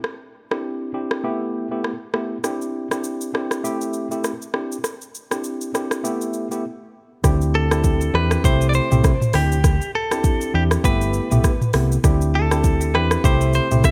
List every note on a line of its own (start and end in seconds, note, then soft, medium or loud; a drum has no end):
0.04 cross-stick medium
0.51 0.91 C4 medium
0.51 0.91 D4 medium
0.51 0.91 E4 medium
0.51 0.91 G4 medium
0.51 cross-stick medium
0.94 1.22 C4 medium
0.94 1.22 D4 medium
0.94 1.22 E4 medium
0.94 1.22 G4 medium
1.11 cross-stick medium
1.24 1.67 A3 medium
1.24 1.67 B3 medium
1.24 1.67 E4 medium
1.24 1.67 G4 medium
1.71 1.91 A3 medium
1.71 1.91 B3 medium
1.71 1.91 E4 medium
1.71 1.92 G4 medium
1.84 cross-stick medium
2.14 2.37 A3 medium
2.14 2.37 B3 medium
2.14 2.37 E4 medium
2.14 2.37 G4 medium
2.14 cross-stick medium
2.44 2.87 C4 medium
2.44 2.87 D4 medium
2.44 2.87 E4 medium
2.44 2.87 G4 loud
2.44 cross-stick medium
2.44 shaker medium
2.61 shaker soft
2.91 3.31 C4 medium
2.91 3.31 D4 medium
2.91 3.31 E4 medium
2.91 3.31 G4 medium
2.91 cross-stick medium
2.91 shaker soft
3.04 shaker medium
3.21 shaker medium
3.34 3.62 C4 medium
3.34 3.62 D4 medium
3.34 3.62 E4 medium
3.34 3.62 G4 medium
3.34 cross-stick medium
3.51 cross-stick medium
3.51 shaker soft
3.64 4.07 A3 medium
3.64 4.07 C4 medium
3.64 4.07 E4 medium
3.64 4.07 G4 loud
3.64 shaker medium
3.81 shaker soft
3.93 shaker soft
4.11 4.31 A3 medium
4.11 4.31 C4 medium
4.11 4.31 E4 medium
4.11 4.32 G4 medium
4.11 shaker soft
4.24 cross-stick medium
4.24 shaker medium
4.42 shaker soft
4.54 4.77 C4 medium
4.54 4.77 D4 medium
4.54 4.77 E4 medium
4.54 4.77 G4 medium
4.54 cross-stick medium
4.72 shaker medium
4.84 cross-stick medium
4.84 shaker medium
5.01 shaker soft
5.15 shaker medium
5.31 5.71 C4 medium
5.31 5.71 D4 medium
5.31 5.71 E4 medium
5.31 5.71 G4 medium
5.31 cross-stick medium
5.31 shaker soft
5.44 shaker medium
5.61 shaker medium
5.74 6.02 C4 medium
5.74 6.02 D4 medium
5.74 6.02 E4 medium
5.74 6.02 G4 medium
5.74 cross-stick medium
5.74 shaker medium
5.91 cross-stick medium
5.91 shaker soft
6.04 6.47 A3 medium
6.04 6.47 B3 medium
6.04 6.47 E4 medium
6.04 6.47 G4 medium
6.04 shaker medium
6.21 shaker soft
6.33 shaker soft
6.51 6.64 A3 medium
6.51 6.64 B3 medium
6.51 6.64 E4 medium
6.51 6.64 G4 medium
6.51 shaker soft
7.24 8.10 D2 loud
7.24 7.67 C4 loud
7.24 7.67 D4 medium
7.24 7.67 E4 medium
7.24 7.67 G4 loud
7.24 kick loud
7.24 cross-stick medium
7.24 shaker medium
7.41 shaker soft
7.55 8.16 A4 loud
7.71 8.11 C4 medium
7.71 8.11 D4 medium
7.71 8.11 E4 medium
7.71 8.11 G4 medium
7.71 cross-stick loud
7.71 shaker medium
7.84 kick medium
7.84 shaker medium
8.01 shaker medium
8.14 8.36 E2 medium
8.14 8.42 C4 medium
8.14 8.42 D4 medium
8.14 8.42 E4 medium
8.14 8.42 G4 medium
8.14 8.45 B4 loud
8.14 cross-stick medium
8.31 cross-stick loud
8.31 shaker medium
8.44 8.79 C2 loud
8.44 8.87 A3 medium
8.44 8.87 C4 medium
8.44 8.87 E4 medium
8.44 8.87 G4 loud
8.44 8.67 C5 loud
8.44 kick loud
8.44 shaker medium
8.61 shaker medium
8.69 8.75 D5 medium
8.73 9.36 C5 loud
8.73 shaker soft
8.91 9.13 C2 medium
8.91 9.11 A3 medium
8.91 9.11 C4 medium
8.91 9.11 E4 medium
8.91 9.12 G4 medium
8.91 mid tom loud
8.91 shaker medium
9.04 kick loud
9.04 cross-stick medium
9.04 shaker medium
9.21 mid tom medium
9.21 shaker soft
9.33 9.78 D2 loud
9.33 9.57 C4 medium
9.33 9.57 D4 medium
9.33 9.57 E4 medium
9.33 9.57 G4 medium
9.33 9.91 G4 loud
9.33 cross-stick medium
9.33 open hi-hat medium
9.52 shaker medium
9.64 kick loud
9.64 cross-stick medium
9.64 shaker medium
9.81 shaker soft
9.95 10.55 A4 loud
10.11 10.51 C4 medium
10.11 10.51 D4 medium
10.11 10.51 E4 medium
10.11 10.51 G4 medium
10.11 cross-stick loud
10.11 shaker medium
10.24 kick medium
10.24 shaker medium
10.41 shaker medium
10.54 10.76 E2 loud
10.54 10.82 C4 medium
10.54 10.82 D4 medium
10.54 10.82 E4 medium
10.54 10.82 G4 medium
10.54 10.63 G4 medium
10.71 cross-stick loud
10.71 shaker medium
10.84 11.19 G1 loud
10.84 11.27 A3 medium
10.84 11.27 B3 medium
10.84 11.27 E4 medium
10.84 11.27 G4 loud
10.84 11.71 B4 medium
10.84 kick loud
10.84 shaker medium
11.01 shaker medium
11.13 shaker soft
11.31 11.41 B1 medium
11.31 11.51 A3 medium
11.31 11.51 B3 medium
11.31 11.51 E4 medium
11.31 11.52 G4 medium
11.31 mid tom loud
11.31 shaker medium
11.44 kick loud
11.44 cross-stick medium
11.44 shaker medium
11.61 mid tom medium
11.61 shaker soft
11.73 11.96 C2 medium
11.73 11.97 A3 medium
11.73 11.97 B3 medium
11.73 11.97 E4 medium
11.73 11.97 G4 medium
11.73 cross-stick loud
11.73 open hi-hat medium
11.92 shaker medium
12.04 12.94 D2 loud
12.04 12.47 C4 medium
12.04 12.47 D4 medium
12.04 12.47 E4 medium
12.04 12.47 G4 loud
12.04 kick loud
12.04 cross-stick medium
12.04 shaker medium
12.21 shaker soft
12.35 12.96 A4 medium
12.51 12.91 C4 medium
12.51 12.91 D4 medium
12.51 12.91 E4 medium
12.51 12.91 G4 medium
12.51 cross-stick loud
12.51 shaker soft
12.64 kick medium
12.64 shaker medium
12.81 shaker medium
12.94 13.16 E2 medium
12.94 13.22 C4 medium
12.94 13.22 D4 medium
12.94 13.22 E4 medium
12.94 13.22 G4 medium
12.94 13.25 B4 medium
12.94 cross-stick loud
13.11 cross-stick loud
13.11 shaker medium
13.24 13.59 C2 loud
13.24 13.67 A3 medium
13.24 13.67 C4 medium
13.24 13.67 E4 medium
13.24 13.67 G4 loud
13.24 13.53 C5 loud
13.24 kick loud
13.24 shaker medium
13.41 shaker medium
13.53 13.85 C5 loud
13.53 shaker soft
13.71 13.91 C2 medium
13.71 13.91 A3 medium
13.71 13.91 C4 medium
13.71 13.91 E4 medium
13.71 13.91 G4 medium
13.71 mid tom loud
13.71 shaker medium
13.84 13.91 E5 loud
13.84 kick loud
13.84 cross-stick medium
13.84 shaker medium